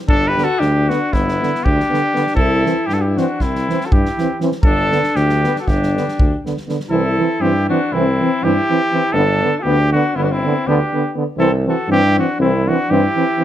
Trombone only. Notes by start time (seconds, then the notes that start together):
0.37 D3
0.89 D3
1.42 D3
1.92 D3
2.14 D3
2.65 E3
3.17 E3
3.69 E3
4.18 E3
4.41 E3
4.91 D3
5.43 D3
5.96 D3
6.46 D3
6.68 D3
6.90 E3
7.18 E3
7.42 E3
7.70 E3
7.93 E3
8.20 E3
8.43 E3
8.70 E3
8.92 E3
9.14 D3
9.42 D3
9.65 D3
9.93 D3
10.17 D3
10.45 D3
10.69 D3
10.94 D3
11.16 D3
11.38 E3
11.66 E3
11.89 E3
12.17 E3
12.40 E3
12.68 E3
12.90 E3
13.15 E3
13.38 E3